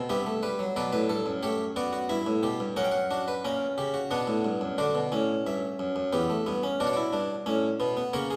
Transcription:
0.09 0.74 G2 medium
0.09 0.26 B3 medium
0.09 0.30 G4 medium
0.09 0.74 E5 medium
0.26 0.42 A3 medium
0.43 0.59 G3 medium
0.43 0.63 B4 medium
0.59 0.75 F#3 medium
0.76 0.92 B2 medium
0.76 1.41 F#3 medium
0.76 0.91 B4 medium
0.76 1.41 D5 medium
0.93 1.09 A2 medium
0.93 1.09 B4 medium
1.09 1.25 G2 medium
1.09 1.30 A4 medium
1.26 2.06 F#2 medium
1.43 1.63 A3 medium
1.43 1.63 G4 medium
1.43 1.63 C#5 medium
1.76 2.73 B3 medium
1.76 1.92 F#4 medium
1.76 1.97 D5 medium
1.93 2.09 F#4 medium
2.09 2.25 G2 medium
2.09 2.30 E4 medium
2.09 2.74 E5 medium
2.26 2.42 A2 medium
2.43 2.59 B2 medium
2.43 2.64 G4 medium
2.60 2.76 G2 medium
2.76 3.42 F#2 medium
2.76 2.97 C#4 medium
2.76 2.97 A#4 medium
2.76 2.83 F#5 medium
2.84 2.91 G5 medium
2.92 4.08 F#5 medium
3.11 3.31 D4 medium
3.11 3.26 F#4 medium
3.28 3.43 B4 medium
3.45 3.65 A#2 medium
3.45 4.09 C#4 medium
3.45 3.65 A#4 medium
3.78 3.98 C#3 medium
3.78 3.94 G4 medium
3.94 4.10 F#4 medium
4.11 4.27 B2 medium
4.11 4.76 B3 medium
4.11 4.76 D4 medium
4.11 4.76 F#5 medium
4.27 4.44 A2 medium
4.45 4.61 G2 soft
4.61 4.78 F#2 medium
4.78 4.95 D3 medium
4.78 4.99 D4 medium
4.78 6.09 F#4 medium
4.78 5.44 D5 medium
4.95 5.11 B2 medium
5.12 5.33 A2 soft
5.12 6.10 C#4 medium
5.46 5.67 G2 medium
5.46 6.76 E5 soft
5.79 5.95 F#2 medium
5.96 6.12 F#2 medium
6.13 6.33 E2 medium
6.13 6.29 B3 medium
6.13 6.78 G4 medium
6.30 6.46 A3 medium
6.46 6.67 G2 medium
6.46 6.63 B3 soft
6.63 6.79 C#4 medium
6.80 7.01 B2 medium
6.80 6.96 D4 medium
6.80 8.10 F#4 medium
6.80 6.87 D5 medium
6.87 6.94 C#5 medium
6.93 7.13 E4 medium
6.93 8.10 D5 medium
7.13 7.33 G2 soft
7.13 7.34 D4 medium
7.46 7.67 A2 medium
7.46 7.67 C#4 medium
7.80 8.01 B2 medium
7.80 7.96 B3 medium
7.97 8.13 B3 medium
8.13 8.34 C#3 medium
8.13 8.34 A#3 medium
8.13 8.30 A#4 medium
8.13 8.36 C#5 medium
8.31 8.36 G#4 medium

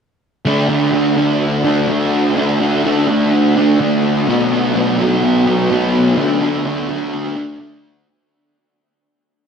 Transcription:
0.45 0.91 D3 loud
0.45 0.70 A3 loud
0.45 0.68 D4 loud
0.69 0.93 A3 medium
0.69 0.94 D4 medium
0.92 1.87 D3 medium
0.92 1.18 A3 medium
0.92 1.16 D4 medium
1.16 1.65 A3 medium
1.16 1.63 D4 medium
1.64 1.89 A3 medium
1.64 1.89 D4 medium
1.88 2.34 D3 medium
1.88 2.36 A3 medium
1.88 2.37 D4 medium
2.35 2.83 D3 medium
2.35 2.62 A3 loud
2.35 2.59 D4 loud
2.60 2.85 A3 medium
2.60 2.85 D4 medium
2.84 3.31 D3 medium
2.84 3.09 A3 medium
2.84 3.06 D4 medium
3.07 3.58 A3 medium
3.07 3.55 D4 medium
3.56 3.80 A3 medium
3.56 3.80 D4 medium
3.79 4.25 D3 medium
3.79 4.28 A3 medium
3.79 4.26 D4 loud
4.28 4.73 B2 loud
4.28 4.53 F#3 medium
4.28 4.51 B3 medium
4.52 4.75 F#3 medium
4.52 4.75 B3 medium
4.74 5.22 B2 medium
4.74 5.01 F#3 medium
4.74 4.97 B3 medium
4.99 5.49 F#3 medium
4.99 5.46 B3 medium
5.47 5.71 F#3 medium
5.47 5.71 B3 medium
5.70 6.16 B2 medium
5.70 6.18 F#3 medium
5.70 6.17 B3 medium
6.17 6.63 D3 loud
6.17 6.42 A3 medium
6.17 6.40 D4 loud
6.41 6.65 A3 medium
6.41 6.66 D4 medium
6.65 7.12 D3 medium
6.65 6.89 A3 medium
6.65 6.87 D4 medium
6.88 7.37 A3 medium
6.88 7.35 D4 medium
7.36 7.59 A3 medium
7.36 7.60 D4 medium
7.59 8.05 D3 medium
7.59 8.06 A3 medium
7.59 8.06 D4 medium

